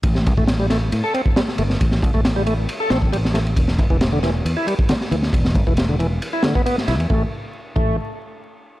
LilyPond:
<<
  \new Staff \with { instrumentName = "Tonewheel organ" } { \time 4/4 \key e \phrygian \tempo 4 = 136 r8. a16 r16 g16 a16 r8 a'16 c'16 r16 g16 r16 a16 r16 | r8. a16 r16 g16 a16 r8 a'16 c'16 r16 g16 r16 a16 r16 | r8. e16 r16 d16 e16 r8 e'16 g16 r16 d16 r16 e16 r16 | r8. e16 r16 d16 e16 r8 e'16 d16 b16 b16 r16 e'16 r16 |
a16 r4 r16 a8 r2 | }
  \new Staff \with { instrumentName = "Fingered electric bass" } { \clef bass \time 4/4 \key e \phrygian a,,8 c,16 a,,4~ a,,16 a,16 r4 r16 g,,8 | a,,8 c,16 a,,4~ a,,16 r8 a,,4. | e,,8 g,,16 e,,4~ e,,16 e,16 r4 r16 d,8 | e,,8 g,,16 e,,4~ e,,16 r4. b,,16 e,16 |
a,,16 r4 r16 a,,8 r2 | }
  \new DrumStaff \with { instrumentName = "Drums" } \drummode { \time 4/4 <bd cymr>16 sn16 <bd cymr>16 bd16 <cymr sn>8 <cymr sn>8 cymr8 cymr16 bd16 <cymr sn>16 sn16 cymr16 sn16 | <bd cymr>16 sn16 <bd cymr>16 bd16 <cymr sn>8 cymr8 cymr8 <cymr sn>16 bd16 cymr16 sn16 <cymr sn>16 cymr16 | <bd cymr>16 sn16 <bd cymr>16 bd16 <cymr sn>8 <cymr sn>8 cymr8 cymr16 bd16 <cymr sn>16 sn16 cymr16 sn16 | <bd cymr>16 sn16 <bd cymr>16 bd16 <cymr sn>8 cymr8 cymr8 <cymr sn>16 bd16 cymr16 sn16 <cymr sn>16 cymr16 |
bd4 r8 bd8 r4 r4 | }
>>